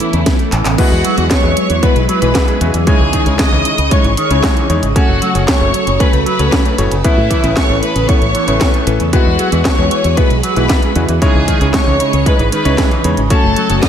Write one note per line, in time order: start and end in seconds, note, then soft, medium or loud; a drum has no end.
0.00 0.76 E3 medium
0.00 0.13 E3 loud
0.00 0.74 A3 medium
0.00 0.76 B3 medium
0.00 0.76 C#4 medium
0.00 0.52 E4 medium
0.00 0.74 A4 medium
0.00 closed hi-hat medium
0.13 0.23 E2 medium
0.13 0.20 C#3 medium
0.13 closed hi-hat medium
0.26 0.37 B3 medium
0.26 kick loud
0.26 snare loud
0.26 closed hi-hat medium
0.39 0.50 A3 medium
0.39 closed hi-hat soft
0.52 0.62 A1 medium
0.52 0.63 E3 medium
0.52 clap medium
0.52 closed hi-hat medium
0.65 0.75 A1 medium
0.65 0.76 C#3 medium
0.65 clap loud
0.65 closed hi-hat medium
0.78 2.85 F#3 medium
0.78 4.92 G#3 medium
0.78 1.14 G#3 loud
0.78 2.85 B3 medium
0.78 0.89 B3 loud
0.78 2.85 E4 medium
0.78 1.14 E4 medium
0.78 1.14 F#4 medium
0.78 1.27 F#4 loud
0.78 4.92 G#4 medium
0.78 1.14 B4 loud
0.78 1.27 F#5 medium
0.78 kick loud
0.78 closed hi-hat medium
0.78 crash loud
0.92 1.01 E2 medium
0.92 1.02 G#3 medium
1.05 1.17 F#3 loud
1.05 closed hi-hat medium
1.18 1.27 E2 medium
1.18 1.24 E3 medium
1.18 1.40 G#3 medium
1.18 1.40 E4 medium
1.18 1.40 F#4 medium
1.18 1.40 B4 medium
1.18 closed hi-hat medium
1.31 1.42 B3 medium
1.31 1.83 C#5 loud
1.31 1.83 C#6 medium
1.31 kick loud
1.31 snare loud
1.31 clap loud
1.31 closed hi-hat medium
1.44 1.53 E2 medium
1.44 1.68 G#3 medium
1.44 1.55 G#3 medium
1.44 1.68 E4 medium
1.44 1.68 F#4 medium
1.44 1.68 B4 medium
1.57 1.68 F#3 medium
1.57 closed hi-hat medium
1.70 1.79 E2 medium
1.70 1.81 E3 medium
1.70 closed hi-hat medium
1.83 1.98 G#3 medium
1.83 1.94 B3 loud
1.83 1.98 E4 medium
1.83 1.98 F#4 medium
1.83 1.98 B4 medium
1.83 2.08 B4 loud
1.83 2.09 B5 medium
1.83 kick loud
1.83 closed hi-hat medium
1.96 2.05 B1 medium
1.96 2.07 G#3 medium
1.96 closed hi-hat soft
2.09 2.21 F#3 loud
2.09 2.57 B4 medium
2.09 2.58 B5 medium
2.09 closed hi-hat medium
2.22 2.32 B1 medium
2.22 2.28 E3 medium
2.22 2.58 G#3 medium
2.22 2.58 E4 medium
2.22 2.58 F#4 medium
2.22 2.58 B4 loud
2.22 closed hi-hat medium
2.35 2.46 B3 medium
2.35 kick loud
2.35 snare loud
2.35 clap medium
2.35 closed hi-hat medium
2.48 2.59 G#3 medium
2.48 closed hi-hat soft
2.61 2.71 E2 medium
2.61 2.76 C#3 medium
2.61 2.72 F#3 medium
2.61 2.76 G#3 medium
2.61 2.76 E4 medium
2.61 2.76 F#4 medium
2.61 2.76 B4 loud
2.61 closed hi-hat medium
2.74 2.84 E2 medium
2.74 2.85 E3 medium
2.74 closed hi-hat medium
2.87 3.23 C#3 loud
2.87 3.23 G#3 medium
2.87 2.98 G#3 loud
2.87 4.94 C#4 medium
2.87 3.23 D#4 medium
2.87 3.23 E4 medium
2.87 3.36 G#4 loud
2.87 3.23 C#5 loud
2.87 4.94 D#5 medium
2.87 3.36 G#5 medium
2.87 kick loud
2.87 closed hi-hat medium
3.00 3.10 C#2 medium
3.00 3.11 E3 medium
3.13 3.26 D#3 loud
3.13 kick medium
3.13 closed hi-hat medium
3.26 3.36 C#2 medium
3.26 3.49 C#3 medium
3.26 3.33 C#3 medium
3.26 3.49 G#3 medium
3.26 3.49 D#4 medium
3.26 3.49 E4 medium
3.26 3.49 C#5 medium
3.26 closed hi-hat medium
3.39 3.50 G#3 medium
3.39 3.92 D#5 loud
3.39 3.92 D#6 medium
3.39 kick loud
3.39 snare loud
3.39 clap loud
3.39 closed hi-hat medium
3.52 3.62 C#2 medium
3.52 3.77 C#3 medium
3.52 3.63 E3 medium
3.52 3.77 G#3 medium
3.52 3.77 D#4 medium
3.52 3.77 E4 medium
3.52 3.77 C#5 medium
3.65 3.76 D#3 medium
3.65 closed hi-hat medium
3.78 3.88 C#2 medium
3.78 3.89 C#3 medium
3.78 closed hi-hat medium
3.91 4.07 C#3 medium
3.91 4.07 G#3 medium
3.91 4.02 G#3 loud
3.91 4.07 D#4 medium
3.91 4.07 E4 medium
3.91 4.07 C#5 medium
3.91 4.16 C#5 loud
3.91 4.17 C#6 medium
3.91 kick loud
3.91 closed hi-hat medium
4.04 4.14 G#1 medium
4.04 4.15 E3 medium
4.04 closed hi-hat soft
4.17 4.30 D#3 loud
4.17 4.66 C#5 loud
4.17 4.66 C#6 medium
4.17 closed hi-hat medium
4.30 4.40 C#2 medium
4.30 4.67 C#3 medium
4.30 4.37 C#3 medium
4.30 4.67 G#3 medium
4.30 4.67 D#4 medium
4.30 4.67 E4 medium
4.30 4.67 C#5 loud
4.30 closed hi-hat medium
4.44 4.54 G#3 medium
4.44 kick loud
4.44 snare loud
4.44 clap medium
4.44 closed hi-hat medium
4.57 4.67 E3 medium
4.57 closed hi-hat soft
4.69 4.79 E2 medium
4.69 4.81 D#3 medium
4.69 4.85 G#3 medium
4.69 4.85 D#4 medium
4.69 4.85 E4 medium
4.69 4.85 C#5 loud
4.69 closed hi-hat medium
4.83 4.92 G#1 medium
4.83 4.93 C#3 medium
4.83 closed hi-hat medium
4.96 7.02 C#3 medium
4.96 7.02 F#3 medium
4.96 5.32 A3 loud
4.96 9.09 A3 medium
4.96 5.07 C#4 loud
4.96 5.32 C#4 medium
4.96 5.44 F#4 loud
4.96 5.32 F#4 medium
4.96 7.02 F#4 medium
4.96 9.09 A4 medium
4.96 5.32 C#5 loud
4.96 5.45 F#5 medium
4.96 kick loud
4.96 closed hi-hat medium
5.09 5.18 F#1 medium
5.09 5.20 A3 medium
5.22 5.34 F#3 loud
5.22 closed hi-hat medium
5.35 5.44 F#1 medium
5.35 5.41 C#3 medium
5.35 5.58 A3 medium
5.35 5.58 C#4 medium
5.35 5.58 F#4 medium
5.35 5.58 C#5 medium
5.35 closed hi-hat medium
5.48 5.59 C#4 medium
5.48 6.00 C#5 loud
5.48 6.00 C#6 medium
5.48 kick loud
5.48 snare loud
5.48 clap loud
5.48 closed hi-hat medium
5.61 5.71 F#1 medium
5.61 5.72 A3 medium
5.61 5.85 A3 medium
5.61 5.85 C#4 medium
5.61 5.85 F#4 medium
5.61 5.85 C#5 medium
5.74 5.85 F#3 medium
5.74 closed hi-hat medium
5.87 5.97 F#1 medium
5.87 5.98 C#3 medium
5.87 closed hi-hat medium
6.00 6.15 A3 medium
6.00 6.11 C#4 loud
6.00 6.15 C#4 medium
6.00 6.15 F#4 medium
6.00 6.25 B4 loud
6.00 6.15 C#5 medium
6.00 6.26 B5 medium
6.00 kick loud
6.00 closed hi-hat medium
6.13 6.23 C#2 medium
6.13 6.24 A3 medium
6.13 closed hi-hat soft
6.26 6.38 F#3 loud
6.26 6.75 B4 loud
6.26 6.75 B5 medium
6.26 closed hi-hat medium
6.39 6.49 C#2 medium
6.39 6.46 C#3 medium
6.39 6.75 A3 medium
6.39 6.75 C#4 medium
6.39 6.75 F#4 medium
6.39 6.75 C#5 loud
6.39 closed hi-hat medium
6.52 6.63 C#4 medium
6.52 kick loud
6.52 snare loud
6.52 clap medium
6.52 closed hi-hat medium
6.65 6.76 A3 medium
6.65 closed hi-hat soft
6.78 6.88 F#1 loud
6.78 6.94 A2 medium
6.78 6.89 F#3 medium
6.78 6.94 A3 medium
6.78 6.94 C#4 medium
6.78 6.94 F#4 medium
6.78 6.94 C#5 loud
6.78 closed hi-hat medium
6.91 7.01 F#1 medium
6.91 7.02 C#3 medium
6.91 closed hi-hat medium
7.04 7.40 A2 loud
7.04 7.40 A3 medium
7.04 9.11 B3 medium
7.04 7.15 B3 loud
7.04 9.11 C#4 medium
7.04 7.40 C#4 medium
7.04 7.40 E4 medium
7.04 7.53 E4 loud
7.04 7.40 B4 loud
7.04 7.53 E5 medium
7.04 kick loud
7.04 closed hi-hat medium
7.17 7.27 A2 medium
7.17 7.28 A3 medium
7.30 7.43 E3 loud
7.30 kick medium
7.30 closed hi-hat medium
7.43 7.53 A1 medium
7.43 7.67 A2 medium
7.43 7.50 C#3 medium
7.43 7.67 A3 medium
7.43 7.67 C#4 medium
7.43 7.67 E4 medium
7.43 7.67 B4 medium
7.43 closed hi-hat medium
7.56 7.67 B3 medium
7.56 7.83 C#5 loud
7.56 7.83 C#6 medium
7.56 kick loud
7.56 snare loud
7.56 clap medium
7.56 closed hi-hat medium
7.69 7.79 A1 medium
7.69 7.94 A2 medium
7.69 7.80 A3 medium
7.69 7.94 A3 medium
7.69 7.94 C#4 medium
7.69 7.94 E4 medium
7.69 7.94 B4 medium
7.83 7.93 E3 medium
7.83 8.07 B4 loud
7.83 8.07 B5 medium
7.83 closed hi-hat medium
7.96 8.05 A1 medium
7.96 8.06 C#3 medium
7.96 closed hi-hat medium
8.09 8.24 A2 medium
8.09 8.24 A3 medium
8.09 8.20 B3 loud
8.09 8.24 C#4 medium
8.09 8.24 E4 medium
8.09 8.24 B4 medium
8.09 8.87 C#5 loud
8.09 8.87 C#6 medium
8.09 kick loud
8.09 closed hi-hat medium
8.22 8.31 A1 medium
8.22 8.33 A3 medium
8.22 closed hi-hat soft
8.35 8.47 E3 loud
8.35 closed hi-hat medium
8.48 8.58 A1 medium
8.48 8.84 A2 medium
8.48 8.54 C#3 medium
8.48 8.84 A3 medium
8.48 8.84 C#4 medium
8.48 8.84 E4 medium
8.48 8.84 B4 loud
8.48 closed hi-hat medium
8.61 8.72 B3 medium
8.61 kick loud
8.61 snare loud
8.61 clap medium
8.61 closed hi-hat medium
8.74 8.85 A3 medium
8.74 closed hi-hat soft
8.87 8.97 A1 medium
8.87 8.98 E3 medium
8.87 9.02 A3 medium
8.87 9.02 C#4 medium
8.87 9.02 E4 medium
8.87 9.02 B4 loud
8.87 closed hi-hat medium
9.00 9.10 E2 medium
9.00 9.11 C#3 medium
9.00 closed hi-hat medium
9.13 13.26 G#3 medium
9.13 9.49 G#3 loud
9.13 9.24 B3 loud
9.13 11.20 B3 medium
9.13 9.49 E4 medium
9.13 9.62 F#4 loud
9.13 9.49 F#4 medium
9.13 11.20 F#4 medium
9.13 11.20 G#4 medium
9.13 9.49 B4 loud
9.13 9.62 F#5 medium
9.13 kick loud
9.13 closed hi-hat medium
9.26 9.36 E2 medium
9.26 9.37 G#3 medium
9.39 9.52 F#3 loud
9.39 closed hi-hat medium
9.52 9.62 E2 medium
9.52 9.59 E3 medium
9.52 9.75 G#3 medium
9.52 9.75 E4 medium
9.52 9.75 F#4 medium
9.52 9.75 B4 medium
9.52 closed hi-hat medium
9.65 9.76 B3 medium
9.65 10.17 C#5 loud
9.65 10.18 C#6 medium
9.65 kick loud
9.65 snare loud
9.65 clap medium
9.65 closed hi-hat medium
9.78 9.88 E2 medium
9.78 10.03 G#3 medium
9.78 9.89 G#3 medium
9.78 10.03 E4 medium
9.78 10.03 F#4 medium
9.78 10.03 B4 medium
9.91 10.03 E3 medium
9.91 closed hi-hat medium
10.04 10.14 E2 medium
10.04 10.15 E3 medium
10.04 closed hi-hat medium
10.17 10.33 G#3 medium
10.17 10.28 B3 loud
10.17 10.33 E4 medium
10.17 10.33 F#4 medium
10.17 10.42 B4 loud
10.17 10.33 B4 medium
10.17 10.43 B5 medium
10.17 kick loud
10.17 closed hi-hat medium
10.30 10.40 B1 medium
10.30 10.41 G#3 medium
10.30 closed hi-hat soft
10.43 10.56 F#3 loud
10.43 10.92 B4 loud
10.43 10.92 B5 medium
10.43 closed hi-hat medium
10.56 10.66 B1 medium
10.56 10.63 E3 medium
10.56 10.93 G#3 medium
10.56 10.93 E4 medium
10.56 10.93 F#4 medium
10.56 10.93 B4 loud
10.56 closed hi-hat medium
10.69 10.80 B3 medium
10.69 kick loud
10.69 snare loud
10.69 clap medium
10.69 closed hi-hat medium
10.83 10.93 G#3 medium
10.83 closed hi-hat soft
10.96 11.05 E2 medium
10.96 11.11 C#3 medium
10.96 11.07 E3 medium
10.96 11.11 G#3 medium
10.96 11.11 E4 medium
10.96 11.11 F#4 medium
10.96 11.11 B4 loud
10.96 closed hi-hat medium
11.09 11.18 E2 medium
11.09 11.20 E3 medium
11.09 closed hi-hat medium
11.22 11.58 C#3 loud
11.22 11.33 G#3 loud
11.22 11.58 G#3 medium
11.22 13.28 C#4 medium
11.22 11.58 D#4 medium
11.22 11.58 E4 medium
11.22 13.28 G#4 medium
11.22 11.70 G#4 loud
11.22 11.58 C#5 loud
11.22 13.28 D#5 medium
11.22 11.71 G#5 medium
11.22 kick loud
11.22 closed hi-hat medium
11.35 11.44 C#2 medium
11.35 11.46 E3 medium
11.48 11.60 D#3 loud
11.48 kick medium
11.48 closed hi-hat medium
11.61 11.71 C#2 medium
11.61 11.84 C#3 medium
11.61 11.67 C#3 medium
11.61 11.84 G#3 medium
11.61 11.84 D#4 medium
11.61 11.84 E4 medium
11.61 11.84 C#5 medium
11.61 closed hi-hat medium
11.74 11.85 G#3 medium
11.74 12.26 C#5 loud
11.74 12.26 C#6 medium
11.74 kick loud
11.74 snare loud
11.74 clap medium
11.74 closed hi-hat medium
11.87 11.97 C#2 medium
11.87 12.11 C#3 medium
11.87 11.98 E3 medium
11.87 12.11 G#3 medium
11.87 12.11 D#4 medium
11.87 12.11 E4 medium
11.87 12.11 C#5 medium
12.00 12.12 C#3 medium
12.00 closed hi-hat medium
12.13 12.23 C#2 medium
12.13 12.24 C#3 medium
12.13 closed hi-hat medium
12.26 12.41 C#3 medium
12.26 12.37 G#3 loud
12.26 12.41 G#3 medium
12.26 12.41 D#4 medium
12.26 12.41 E4 medium
12.26 12.51 B4 loud
12.26 12.41 C#5 medium
12.26 12.52 B5 medium
12.26 kick loud
12.26 closed hi-hat medium
12.39 12.49 G#1 medium
12.39 12.50 E3 medium
12.39 closed hi-hat soft
12.52 12.65 D#3 loud
12.52 13.01 B4 loud
12.52 13.01 B5 medium
12.52 closed hi-hat medium
12.65 12.75 C#2 medium
12.65 13.01 C#3 medium
12.65 12.72 C#3 medium
12.65 13.01 G#3 medium
12.65 13.01 D#4 medium
12.65 13.01 E4 medium
12.65 13.01 C#5 loud
12.65 closed hi-hat medium
12.78 12.89 G#3 medium
12.78 kick loud
12.78 snare loud
12.78 clap medium
12.78 closed hi-hat medium
12.91 13.02 E3 medium
12.91 closed hi-hat soft
13.04 13.14 E2 loud
13.04 13.16 C#3 medium
13.04 13.20 G#3 medium
13.04 13.20 D#4 medium
13.04 13.20 E4 medium
13.04 13.20 C#5 loud
13.04 closed hi-hat medium
13.17 13.27 G#1 medium
13.17 13.28 C#3 medium
13.17 closed hi-hat medium
13.30 13.89 C#3 medium
13.30 13.89 F#3 medium
13.30 13.66 A3 loud
13.30 13.89 A3 medium
13.30 13.41 C#4 loud
13.30 13.66 C#4 medium
13.30 13.66 F#4 medium
13.30 13.89 F#4 medium
13.30 13.89 A4 medium
13.30 13.79 A4 loud
13.30 13.66 C#5 loud
13.30 13.79 A5 medium
13.30 kick loud
13.30 closed hi-hat medium
13.43 13.53 F#1 medium
13.43 13.54 A3 medium
13.56 13.69 F#3 loud
13.56 closed hi-hat medium
13.69 13.79 F#1 medium
13.69 13.76 C#3 medium
13.69 13.89 A3 medium
13.69 13.89 C#4 medium
13.69 13.89 F#4 medium
13.69 13.89 C#5 medium
13.69 closed hi-hat medium
13.83 13.89 C#4 medium
13.83 13.89 D#5 loud
13.83 13.89 D#6 medium
13.83 kick loud
13.83 snare loud
13.83 clap medium
13.83 closed hi-hat medium